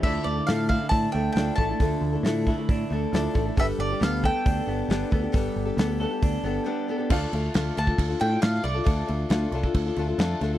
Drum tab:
CC |x---------------|----------------|----------------|----------------|
HH |----o---o---o---|o---o---o---o---|o---o---o---o---|o---o---o-------|
SD |----o-------o---|----o-------o---|----o-------o---|----o-----------|
BD |o-----o-o-----o-|o-----o-o-----o-|o-----o-o-----o-|o-------o-------|

CC |x-x-x-x-x-x-x-x-|x-x-x-x-x-x-x-x-|
HH |----------------|----------------|
SD |----o-------oo--|----o-------o-o-|
BD |o------oo-------|o------oo-------|